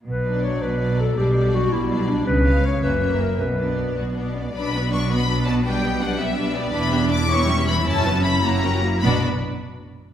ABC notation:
X:1
M:6/8
L:1/8
Q:3/8=108
K:Bm
V:1 name="Violin section"
z d3 d2 | d d3 d2 | z ^e2 =e e2 | z d3 d2 |
b2 c' b2 a | g2 f e2 d | b2 d' c'2 b | a2 b ^a3 |
b z4 z |]
V:2 name="Clarinet"
B2 c B2 A | G2 F E2 D | B2 c B2 ^A | B3 z3 |
z6 | z6 | z6 | z6 |
z6 |]
V:3 name="Violin section"
z D3 D2 | D D3 D2 | z C2 C C2 | z D2 F D C |
[Bd] [FB] [Bd] [FB] [Bd] [FB] | [Bd] [GB] [Bd] [GB] [Bd] [GB] | [Bd] [Ge] [Bd] [Ec] [Ge] [Ec] | [Ec] [FB] [Ec] [Fc] [G^A] [Fc] |
[Fd] z4 z |]
V:4 name="Viola section"
z F,3 F,2 | G, G,3 G,2 | z ^G,2 ^A, A,2 | z B,3 B,2 |
[F,D] B, [F,D] B, [F,D] B, | [G,D] B, [G,D] B, [G,D] B, | [DE] [B,D] [DE] [E,E] [G,C] [E,E] | [CE] [B,C] [CE] [^A,E] [CF] [A,E] |
[B,D] z4 z |]
V:5 name="Cello section" clef=bass
B,,3 B,,3 | B,,3 B,,3 | C,3 F,,3 | B,,3 B,,3 |
B,,6- | B,,6 | E,,6 | F,,4- F,, z |
B,, z4 z |]
V:6 name="Double bass section" clef=bass
B,,,3 B,,,3 | B,,,3 B,,,3 | C,,3 F,,,3 | B,,,3 B,,,3 |
B,,,6- | B,,,6 | E,,,6 | F,,,4- F,,, z |
B,,, z4 z |]